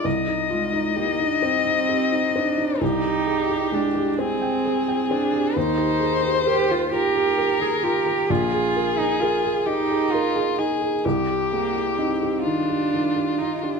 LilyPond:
<<
  \new Staff \with { instrumentName = "Violin" } { \time 6/8 \key c \minor \tempo 4. = 44 ees''2. | g'4. aes'4. | c''4. bes'4. | aes'4. g'8 f'8 aes'8 |
g'4. f'4. | }
  \new Staff \with { instrumentName = "Felt piano" } { \time 6/8 \key c \minor c,16 ees'16 f'16 ees'16 g'16 ees'16 c'16 ees'16 g'16 ees'16 c'16 ees'16 | c,16 g'16 aes'16 g'16 aes16 g'16 c'16 g''16 aes'16 g''16 c'16 g'16 | ees,16 g'16 aes'16 g'16 bes'16 g'16 f'16 g'16 bes'16 g'16 f'16 g'16 | bes,,16 aes'16 bes'16 aes'16 bes'16 aes'16 ees'16 aes'16 bes'16 aes'16 ees'16 aes'16 |
c,16 g'16 aes'16 g'16 ees'16 g'16 ees16 g'16 ees16 g'16 ees'16 g'16 | }
  \new Staff \with { instrumentName = "Cello" } { \time 6/8 \key c \minor r8 aes8 bes16 d'16 c'4 d'8 | ees'4 d'8 c'4 d'8 | ees'4 g'16 f'16 g'8. aes'16 g'8 | f'8. ees'16 f'8 ees'4 r8 |
r8 bes8 c'8 d'4 ees'16 d'16 | }
>>